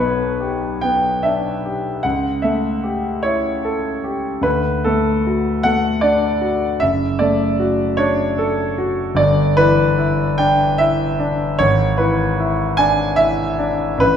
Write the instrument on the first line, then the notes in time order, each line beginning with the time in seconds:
grand piano
Already playing: B1 B3 B4 C#5
0.40 G4
0.81 B3 G5
1.23 D4 E5
1.65 G4
2.03 C#2 F#5
2.42 A3 E5
2.84 G4
3.23 E4 C#5
3.64 A4
4.04 G4
4.41 D2 B4
4.84 A3 A4
5.27 F#4
5.63 A3 F#5
6.01 D4 D5
6.41 F#4
6.80 F#1 E5
7.19 A3 D5
7.60 F#4
7.97 D4 C#5
8.38 A4
8.78 F#4
9.14 G1 D5
9.57 E3 B4
9.98 E4
10.38 D4 G5
10.78 E4 E5
11.20 D4
11.59 G#1 C#5
11.98 E3 B4
12.40 E4
12.77 D4 G#5
13.16 E4 E5
13.59 D4
13.98 A1 B4